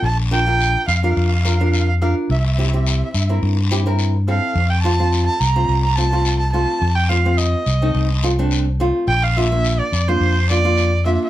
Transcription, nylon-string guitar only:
X:1
M:4/4
L:1/16
Q:"Swing 16ths" 1/4=106
K:F
V:1 name="Nylon-string guitar"
z2 [DFB] [DFB]2 z2 [DFB]2 z [DFB] [DFB]2 z [DFB]2 | z2 [CEG] [CEG]2 z2 [CEB]2 z [CEG] [CEB]2 z [CEA]2 | z2 [A,CF] [A,CF]2 z2 [A,CF]2 z [A,CF] [A,CF]2 z [A,CF]2 | z2 [A,CF] [A,CF]2 z2 [A,C_E]2 z [A,CF] [A,CD]2 z [A,CF]2 |
z2 [B,DF] [B,DF]2 z2 [B,DF]2 z [B,DF] [B,DF]2 z [B,DF]2 |]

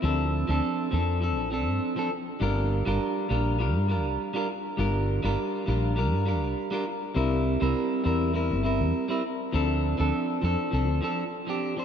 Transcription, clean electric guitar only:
X:1
M:4/4
L:1/16
Q:1/4=101
K:Gdor
V:1 name="Clean electric guitar"
[F,CDA]3 [F,CDA]3 [F,CDA]2 [F,CDA]2 [F,CDA]3 [F,CDA] z2 | [G,DFB]3 [G,DFB]3 [G,DFB]2 [G,DFB]2 [G,DFB]3 [G,DFB] z2 | [G,DFB]3 [G,DFB]3 [G,DFB]2 [G,DFB]2 [G,DFB]3 [G,DFB] z2 | [G,CEB]3 [G,CEB]3 [G,CEB]2 [G,CEB]2 [G,CEB]3 [G,CEB] z2 |
[F,CDA]3 [F,CDA]3 [F,CDA]2 [F,CDA]2 [F,CDA] z2 [F,CDG]2 [F,CDc] |]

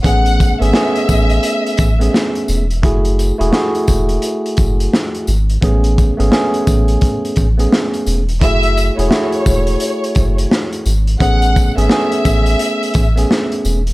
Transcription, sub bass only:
X:1
M:4/4
L:1/16
Q:"Swing 16ths" 1/4=86
K:A
V:1 name="Sub bass" clef=bass
A,,,3 G,,, z2 A,,,2 z2 A,,,2 z2 E,,,2 | F,,,3 E,,, z2 E,,,2 z2 F,,,2 z2 G,,,2 | A,,,3 G,,, z2 A,,,2 z2 A,,,2 z2 E,,,2 | F,,,3 E,,, z2 E,,,2 z2 F,,,2 z2 G,,,2 |
A,,,3 G,,, z2 A,,,2 z2 A,,,2 z2 E,,,2 |]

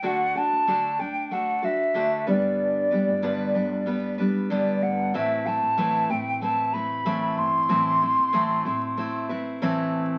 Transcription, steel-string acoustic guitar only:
X:1
M:4/4
L:1/8
Q:"Swing 16ths" 1/4=94
K:Ador
V:1 name="Steel-string acoustic guitar"
[D,A,DFA] [DFA] [D,A,DFA] [DA] [A,DFA] [DFA] [D,A,DFA] [G,,D,G,B,DB]- | [G,,D,G,B,DB] [G,B,DB] [G,,D,G,B,DB] [G,B,DB] [G,B,DB] [G,B,DB] [G,,D,G,B,DB]2 | [A,,E,A,CEB] [A,CEB] [A,,E,A,CEB] [A,CEB] [A,CEB] [A,CEB] [A,,E,A,CE]2 | [A,,E,A,CE] [A,CE] [A,,E,A,CE] [A,CE] [A,CE] [A,CEB] [A,,E,A,CEB]2 |]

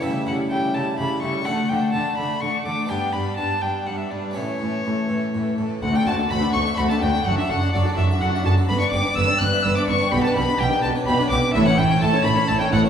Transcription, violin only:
X:1
M:3/4
L:1/16
Q:1/4=126
K:D
V:1 name="Violin"
e2 f2 g2 a2 b2 c'2 | f2 g2 a2 b2 c'2 d'2 | g2 b2 a2 g2 f e d2 | c8- c2 z2 |
f g a2 b2 c'2 b a g2 | f e f2 d2 e2 f2 a2 | b c' d'2 e'2 f'2 e' d' c'2 | b a b2 g2 a2 b2 d'2 |
e f g2 a2 b2 a g f2 |]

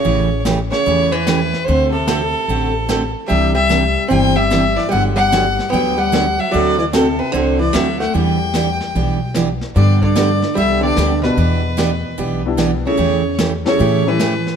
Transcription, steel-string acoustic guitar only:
X:1
M:4/4
L:1/8
Q:"Swing" 1/4=148
K:G
V:1 name="Steel-string acoustic guitar"
[^C,E,A,^CG] z [C,E,A,CG] z [C,E,A,CG] z [C,E,A,CG] z | [D,A,CFA] z [D,A,CFA] z [D,A,CFA] z [D,A,CFA] z | [C,E,DG] z [C,E,DG] z [C,E,DG] z [C,E,DG] z | [D,F,B,DG] z [D,F,B,DG] z [D,F,B,DG] z [D,F,B,DG] z |
[D,A,CFA] z [D,A,CFA] z [D,A,CFA] z [D,A,CFA] z | [E,B,DG] z [E,B,DG] z [E,B,DG] z [E,B,DG] z | [D,G,B,DG] z [D,G,B,DG] z [D,G,B,DG] z [D,G,B,DG] z | [E,B,DG] z [E,B,DG] z [E,B,DG] z [E,B,DG] z |
[E,A,^CG] z [E,A,CG] z [E,A,CG] z [E,A,CG] z |]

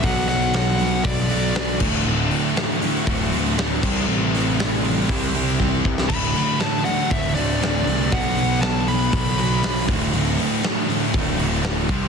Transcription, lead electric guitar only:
X:1
M:4/4
L:1/8
Q:1/4=119
K:Dmix
V:1 name="Lead electric guitar"
f f3 d3 z | z8 | z8 | b2 a f e d3 |
f2 a b4 z | z8 |]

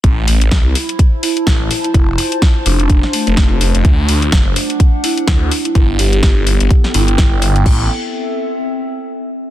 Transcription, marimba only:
X:1
M:4/4
L:1/16
Q:"Swing 16ths" 1/4=126
K:Am
V:1 name="Marimba"
z8 z2 E2 z3 E | E z4 z D D z2 A, A,4- A, | z8 z2 E2 z3 E | z2 G G z6 E6 |
z16 |]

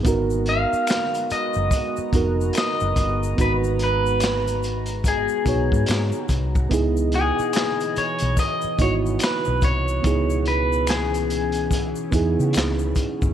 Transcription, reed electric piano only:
X:1
M:4/4
L:1/16
Q:"Swing 16ths" 1/4=72
K:Ab
V:1 name="Reed electric piano"
[_CE_GB]6 z4 [CEGB]4- [CEGB] z | [_CE_G_c]6 z4 [CEGd]4- [CEGd] z | [_CE_FA]6 z4 [CEF_G]4- [CEFG] z | [_CE_FA]6 z4 [CEFA]4- [CEFA] z |]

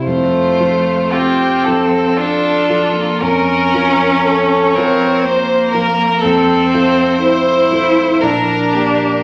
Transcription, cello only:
X:1
M:3/4
L:1/16
Q:1/4=58
K:F
V:1 name="Cello"
A,4 C4 D3 B, | _D6 C2 B,4 | C4 E4 D4 |]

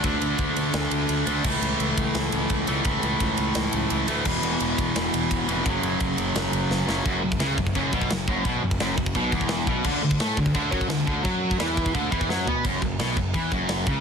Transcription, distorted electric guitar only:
X:1
M:4/4
L:1/8
Q:1/4=172
K:F#m
V:1 name="Distorted electric guitar" clef=bass
[D,A,D]6- [D,A,D] [D,A,D] | [A,,E,A,]6- [A,,E,A,] [A,,E,A,] | [A,,E,A,]6- [A,,E,A,] [A,,E,A,] | [E,,B,,E,]6- [E,,B,,E,] [E,,B,,E,] |
[F,,C,F,]6- [F,,C,F,] [F,,C,F,] | F,, F,, C, F,, F,, B,, F,, F,, | B,, F,, F,, F,, B,, E,,2 B,, | D, D, A, D, D, F, D, D, |
F,2 E,2 D, E, F, B, | F,, F,, B,, F,, E, F,,2 C, |]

